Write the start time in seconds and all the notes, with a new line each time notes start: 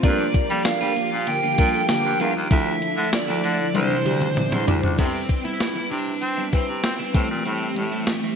0.03 G2 F3 G3 A#3 D4 F4 G4 A#4 D5, kick, closed hi-hat
0.34 G3 F4 A#4, muted clean electric guitar stroke, kick, closed hi-hat
0.50 F3 G3 A#3 D4 F4 A4, closed hi-hat
0.65 G3 F5, muted clean electric guitar stroke, snare, closed hi-hat, tambourine
0.81 G3 A#3 D4 F4
0.96 A#3 D4 F4, closed hi-hat
1.12 A#2, muted clean electric guitar stroke
1.27 D3 A#3 G4 G5, muted clean electric guitar stroke, closed hi-hat
1.42 D3 A#3 D4 F4 G4
1.58 A#2 G3 A#3 D4 F4 A#4, kick, closed hi-hat
1.73 A3 F4 A4, muted clean electric guitar stroke
1.89 D3 A#3 G4 G5, snare, closed hi-hat, tambourine
2.05 G2, muted clean electric guitar stroke
2.19 E2 G3 A#3 D4 F4 A#4 F5, closed hi-hat
2.35 D#2, muted clean electric guitar stroke
2.50 D2 D3 F3 A3 D4 E4 A4 E5, kick, closed hi-hat
2.82 muted clean electric guitar stroke, closed hi-hat
2.97 D3 F3 A3 E4, closed hi-hat
3.13 D5, muted clean electric guitar stroke, snare, closed hi-hat, tambourine
3.28 D2 F3 A3 E4
3.43 D3 F3 A3 E4, closed hi-hat
3.59 muted clean electric guitar stroke
3.74 C2 C3 E3 G3 D4 E4 C5, muted clean electric guitar stroke, closed hi-hat, high tom
3.90 G3 D4 E4, high tom
4.05 D2 G3 D4 E4 G4, closed hi-hat, mid tom
4.21 muted clean electric guitar stroke, mid tom
4.37 muted clean electric guitar stroke, closed hi-hat, mid tom
4.52 E2 G3 D4 E4, mid tom
4.66 D2 G3 D4 E4 D5, closed hi-hat, floor tom
4.83 C#2, muted clean electric guitar stroke, floor tom
4.97 C3 G3 B3 C4 E4 A4, kick, closed hi-hat, crash
5.05 B4
5.29 muted clean electric guitar stroke, kick, closed hi-hat
5.44 G3 B3 E4, closed hi-hat
5.60 muted clean electric guitar stroke, snare, closed hi-hat
5.75 G3 B3 E4
5.90 C3 D4, muted clean electric guitar stroke, closed hi-hat
6.07 muted clean electric guitar stroke
6.21 C4, muted clean electric guitar stroke, closed hi-hat
6.37 G3 B3 E4
6.52 G3 C4 E4 B4, kick, closed hi-hat
6.68 C3, muted clean electric guitar stroke
6.83 C4, muted clean electric guitar stroke, snare, closed hi-hat
6.99 G3 B3 E4
7.14 A2 E3 G3 A3 C4 E4 G4, kick, closed hi-hat
7.30 A#2, muted clean electric guitar stroke
7.45 A2 G3 C4 E4, closed hi-hat
7.76 A2 A3, muted clean electric guitar stroke, closed hi-hat
7.92 G3 C4 E4, closed hi-hat
8.07 muted clean electric guitar stroke, snare, closed hi-hat
8.24 G3 C4 E4